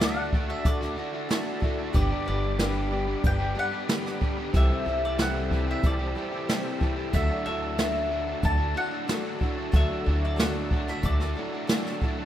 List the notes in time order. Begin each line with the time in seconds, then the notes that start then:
Already playing: D2 F#4 D5 E5 A5
0.00 D3 A3 D4 E4 F#4 A4 F#5, snare, closed hi-hat
0.32 D3 A3 D4 F#4, kick
0.48 A3 D4 F#4 E5
0.65 D2 A3 E4 F#4 A4 D5, kick, closed hi-hat
0.81 A3 D4 F#4, snare
0.96 D3 A3 D4 E4 F#4 A4
1.13 A3 D4 F#4
1.29 D3 A3 D4 E4 F#4 A4, snare, closed hi-hat
1.60 D3 A3 D4 E4 F#4 A4, kick
1.78 A3 D4 F#4
1.93 G1 G2 D3 G3 B3 D4 G4 B4 D5 B5 D6, kick, closed hi-hat
1.97 G4
2.11 G3 B3 D4 G4
2.26 G1 G3 B3 D4 G4 B4 D5
2.59 G2 D3 G3 B3 D4 G4 B4, snare, closed hi-hat
2.91 G3 B3 D4 G4
3.07 G3 B3 D4 G4
3.24 G1 G3 D4 G4 B4 G5, kick, closed hi-hat
3.39 G3 B3 D4 G4
3.55 G3 B3 D4 G4 B4 F#5
3.72 G3 B3 D4 G4
3.87 G2 D3 G3 B3 D4 G4 B4, snare, closed hi-hat
4.06 snare
4.20 G3 B3 D4 G4 B4, kick
4.37 G3 B3 D4 G4
4.52 C2 C3 E3 G3 C4 E4 G4 A4 C5 E5 A5 E6, kick, closed hi-hat
4.69 G3 E4 G4
4.85 C2 E3 G3 C4 E4 G4 A4
4.90 G3
5.05 D5
5.18 C3 E3 G3 C4 E4 G4 A4 F#5, snare, closed hi-hat
5.50 E3 G3 E4 G4, kick
5.67 G3 E4 G4 E5
5.82 C2 G3 C4 E4 A4 D5, kick, closed hi-hat
5.99 G3 E4 G4
6.15 E3 G3 C4 E4 G4 A4
6.32 G3 E4 G4
6.48 C3 E3 G3 C4 E4 G4 A4, snare, closed hi-hat
6.80 E3 G3 C4 E4 G4 A4, kick
6.96 G3 E4 G4
7.12 D2 D3 F#3 A3 D4 E4 F#4 A4 D5 E5, kick, closed hi-hat
7.29 A3 D4 F#4
7.45 D2 F#3 A3 D4 F#4 A4 E5
7.49 E4
7.77 D3 F#3 A3 D4 E4 F#4 A4, snare, closed hi-hat
8.09 F#3 A3 D4 F#4
8.26 A3 D4 F#4
8.42 D2 A3 E4 F#4 A4 A5, kick, closed hi-hat
8.58 A3 D4 F#4
8.75 F#3 A3 D4 E4 F#4 A4 F#5
8.91 A3 D4 F#4
9.07 D3 F#3 A3 D4 E4 F#4 A4, snare, closed hi-hat
9.39 F#3 A3 E4 F#4 A4, kick
9.43 D4 F#4
9.57 A3 D4 F#4
9.72 D2 D3 F#3 A3 E4 F#4 A4, kick, closed hi-hat
9.76 D4 F#4 E5
9.90 A3 D4 F#4
10.05 D2 F#3 A3 D4 E4 F#4 A4
10.09 F#4
10.25 D5
10.36 D3 F#3 A3 E4 F#4 A4, snare, closed hi-hat
10.41 D4 F#4 F#5
10.71 F#3 A3 D4 F#4, kick
10.87 A3 D4 F#4 E5, snare
11.02 D2 A3 E4 F#4 A4 D5, kick, closed hi-hat
11.20 A3 D4 F#4, snare
11.36 F#3 A3 D4 E4 F#4 A4
11.52 A3 D4 F#4
11.67 D3 F#3 A3 D4 E4 F#4 A4, snare, closed hi-hat
11.71 F#4
11.86 snare
12.01 F#3 A3 D4 E4 F#4 A4, kick
12.18 A3 D4 F#4